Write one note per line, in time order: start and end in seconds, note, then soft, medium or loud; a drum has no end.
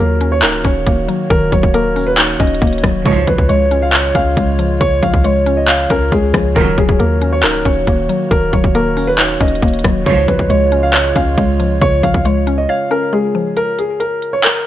0.00 0.44 D#2 loud
0.00 0.65 D#3 loud
0.00 3.02 D#3 medium
0.00 0.87 F#3 medium
0.00 0.85 A#3 medium
0.00 3.02 A#3 medium
0.00 3.02 F#4 medium
0.00 0.30 A#4 medium
0.00 10.02 C#5 medium
0.21 0.63 C#4 medium
0.21 closed hi-hat medium
0.32 0.42 C#5 medium
0.43 0.64 C#1 loud
0.43 1.52 D#4 loud
0.43 0.63 A#4 medium
0.43 clap loud
0.43 closed hi-hat medium
0.64 0.86 D#1 loud
0.64 1.74 C#4 medium
0.64 1.26 C#5 medium
0.64 kick medium
0.64 closed hi-hat medium
0.86 1.08 D#1 loud
0.86 1.73 A#3 loud
0.86 kick medium
0.86 closed hi-hat medium
1.08 1.51 F#3 medium
1.08 closed hi-hat loud
1.30 1.51 D#1 loud
1.30 2.40 D#3 loud
1.30 1.50 A#4 loud
1.30 kick loud
1.30 closed hi-hat medium
1.52 2.36 D#1 loud
1.52 2.62 F#3 medium
1.52 1.72 C#5 medium
1.52 kick medium
1.52 closed hi-hat medium
1.63 kick loud
1.74 2.60 A#3 medium
1.74 2.05 A#4 medium
1.74 closed hi-hat medium
1.96 2.39 C#4 medium
1.96 open hi-hat medium
2.07 2.17 B4 medium
2.18 3.06 D#4 loud
2.18 2.38 C#5 medium
2.18 clap loud
2.18 closed hi-hat medium
2.40 2.61 D#1 loud
2.40 3.05 C#4 medium
2.40 3.01 D#5 medium
2.40 kick medium
2.40 closed hi-hat soft
2.47 closed hi-hat medium
2.54 closed hi-hat medium
2.62 2.83 D#1 loud
2.62 3.05 A#3 medium
2.62 kick medium
2.62 closed hi-hat soft
2.67 closed hi-hat medium
2.73 closed hi-hat medium
2.78 closed hi-hat medium
2.84 3.05 D#1 loud
2.84 3.06 F#3 medium
2.84 kick loud
2.84 cross-stick loud
2.84 closed hi-hat medium
3.05 3.27 C#2 loud
3.05 3.37 C#2 loud
3.05 3.37 G#2 loud
3.05 6.52 C#3 medium
3.05 4.15 C#3 medium
3.05 3.37 F3 loud
3.05 6.52 G#3 medium
3.05 6.52 F4 medium
3.05 3.26 C#5 loud
3.05 kick loud
3.05 closed hi-hat medium
3.27 3.48 C#2 loud
3.27 4.37 F3 medium
3.27 3.48 B4 medium
3.27 kick medium
3.27 closed hi-hat medium
3.38 kick medium
3.49 4.12 C#2 loud
3.49 4.36 G#3 medium
3.49 3.80 C#5 medium
3.49 closed hi-hat medium
3.71 4.14 C#4 medium
3.71 closed hi-hat medium
3.82 3.92 F5 medium
3.93 4.13 C#5 medium
3.93 5.03 C#5 loud
3.93 clap loud
3.93 closed hi-hat medium
4.15 4.36 C#2 loud
4.15 5.25 C#4 medium
4.15 4.77 F5 medium
4.15 kick medium
4.15 closed hi-hat medium
4.37 4.79 C#2 loud
4.37 5.23 G#3 medium
4.37 kick medium
4.37 closed hi-hat medium
4.59 5.01 F3 medium
4.59 closed hi-hat loud
4.81 5.02 C#2 loud
4.81 5.90 C#3 loud
4.81 5.01 C#5 loud
4.81 kick loud
4.81 closed hi-hat medium
5.02 5.87 C#2 loud
5.02 6.12 F3 medium
5.02 5.23 F5 medium
5.02 kick medium
5.02 closed hi-hat medium
5.14 kick loud
5.24 6.11 G#3 medium
5.24 5.55 C#5 medium
5.24 closed hi-hat medium
5.46 5.89 C#4 medium
5.46 closed hi-hat medium
5.57 5.67 D#5 medium
5.68 6.56 C#5 medium
5.68 5.88 F5 medium
5.68 clap loud
5.68 closed hi-hat medium
5.90 6.11 C#2 loud
5.90 6.56 C#4 medium
5.90 6.10 A#4 medium
5.90 kick loud
5.90 closed hi-hat medium
6.12 6.33 C#2 loud
6.12 6.56 G#3 medium
6.12 6.53 G#4 medium
6.12 kick medium
6.12 closed hi-hat medium
6.34 6.55 C#2 loud
6.34 6.56 F3 medium
6.34 kick loud
6.34 cross-stick loud
6.34 closed hi-hat medium
6.56 6.77 D#1 loud
6.56 6.87 D#2 medium
6.56 6.87 C#3 loud
6.56 10.03 D#3 medium
6.56 7.65 D#3 loud
6.56 6.87 F#3 loud
6.56 10.03 A#3 medium
6.56 10.03 F#4 medium
6.56 6.76 A#4 loud
6.56 kick loud
6.56 closed hi-hat medium
6.78 6.99 D#1 loud
6.78 7.87 F#3 medium
6.78 6.98 G#4 medium
6.78 kick medium
6.78 closed hi-hat medium
6.89 kick loud
6.99 7.45 D#2 loud
6.99 7.86 A#3 medium
6.99 7.30 A#4 medium
6.99 closed hi-hat medium
7.22 7.64 C#4 medium
7.22 closed hi-hat medium
7.33 7.43 C#5 medium
7.43 7.64 C#1 loud
7.43 8.53 D#4 loud
7.43 7.64 A#4 medium
7.43 clap loud
7.43 closed hi-hat medium
7.65 7.86 D#1 loud
7.65 8.75 C#4 medium
7.65 8.27 C#5 medium
7.65 kick loud
7.65 closed hi-hat medium
7.87 8.08 D#1 loud
7.87 8.74 A#3 medium
7.87 kick medium
7.87 closed hi-hat medium
8.09 8.52 F#3 medium
8.09 closed hi-hat loud
8.31 8.52 D#1 loud
8.31 9.41 D#3 loud
8.31 8.51 A#4 loud
8.31 kick loud
8.31 closed hi-hat medium
8.53 9.37 D#1 loud
8.53 9.62 F#3 medium
8.53 8.73 C#5 medium
8.53 kick medium
8.53 closed hi-hat medium
8.64 kick loud
8.75 9.61 A#3 medium
8.75 9.06 A#4 medium
8.75 closed hi-hat medium
8.97 9.39 C#4 medium
8.97 open hi-hat medium
9.07 9.18 B4 medium
9.18 10.06 D#4 loud
9.18 9.39 C#5 medium
9.18 clap loud
9.18 closed hi-hat medium
9.40 9.62 D#1 loud
9.40 10.06 C#4 medium
9.40 10.02 D#5 medium
9.40 kick loud
9.40 closed hi-hat soft
9.48 closed hi-hat medium
9.55 closed hi-hat medium
9.62 9.83 D#1 loud
9.62 10.06 A#3 medium
9.62 kick medium
9.62 closed hi-hat soft
9.68 closed hi-hat medium
9.73 closed hi-hat medium
9.79 closed hi-hat medium
9.84 10.05 D#1 loud
9.84 10.06 F#3 medium
9.84 kick loud
9.84 cross-stick loud
9.84 closed hi-hat medium
10.06 10.27 C#2 loud
10.06 10.38 C#2 loud
10.06 10.38 G#2 loud
10.06 13.53 C#3 medium
10.06 11.16 C#3 loud
10.06 10.38 F3 loud
10.06 13.53 G#3 medium
10.06 13.53 F4 medium
10.06 13.53 C#5 medium
10.06 10.26 C#5 loud
10.06 kick loud
10.06 closed hi-hat medium
10.28 10.39 C#2 loud
10.28 11.38 F3 medium
10.28 10.48 B4 medium
10.28 kick medium
10.28 closed hi-hat medium
10.39 10.49 C#2 loud
10.39 kick loud
10.50 11.13 C#2 loud
10.50 11.37 G#3 medium
10.50 10.81 C#5 medium
10.50 closed hi-hat medium
10.72 11.15 C#4 medium
10.72 closed hi-hat medium
10.83 10.93 F5 medium
10.94 11.14 C#5 medium
10.94 12.03 C#5 medium
10.94 clap loud
10.94 closed hi-hat medium
11.16 11.37 C#2 loud
11.16 12.25 C#4 medium
11.16 11.78 F5 medium
11.16 kick loud
11.16 closed hi-hat medium
11.38 11.80 C#2 loud
11.38 12.24 G#3 medium
11.38 kick loud
11.38 closed hi-hat medium
11.60 12.02 F3 medium
11.60 closed hi-hat medium
11.81 12.02 C#2 loud
11.81 12.91 C#3 loud
11.81 12.02 C#5 loud
11.81 kick loud
11.81 closed hi-hat medium
12.03 12.14 C#2 loud
12.03 13.13 F3 medium
12.03 12.23 F5 medium
12.03 kick medium
12.03 closed hi-hat medium
12.14 12.67 C#2 loud
12.14 kick loud
12.25 13.12 G#3 loud
12.25 12.56 C#5 medium
12.25 closed hi-hat medium
12.47 12.90 C#4 medium
12.47 closed hi-hat medium
12.58 12.68 D#5 medium
12.69 13.57 C#5 loud
12.69 12.89 F5 medium
12.91 13.57 C#4 medium
12.91 13.11 A#4 medium
13.13 13.57 G#3 medium
13.13 13.54 G#4 medium
13.35 13.57 F3 medium
13.57 13.77 A#4 loud
13.57 closed hi-hat medium
13.79 13.99 G#4 medium
13.79 closed hi-hat medium
14.00 14.31 A#4 medium
14.00 closed hi-hat medium
14.22 closed hi-hat medium
14.33 14.43 C#5 medium
14.44 14.64 A#4 medium
14.44 clap loud
14.44 closed hi-hat medium